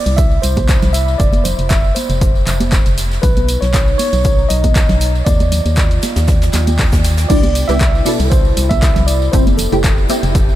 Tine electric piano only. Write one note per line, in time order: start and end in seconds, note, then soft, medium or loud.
0.00 0.18 D5 medium
0.17 0.44 E5 loud
0.42 0.95 C5 medium
0.93 1.20 E5 loud
1.18 1.45 D5 loud
1.44 1.71 C5 medium
1.69 1.96 E5 loud
1.95 2.93 C5 medium
3.22 3.63 B4 loud
3.61 3.97 C#5 medium
3.98 4.51 C#5 loud
4.49 5.28 D#5 loud
5.25 6.74 D5 loud
7.29 7.70 D5 loud
7.68 8.07 E5 loud
8.05 8.17 D5 loud
8.30 8.67 C5 loud
8.69 9.05 E5 loud
9.06 9.33 D5 medium
9.32 9.44 C5 loud
9.57 10.05 A4 medium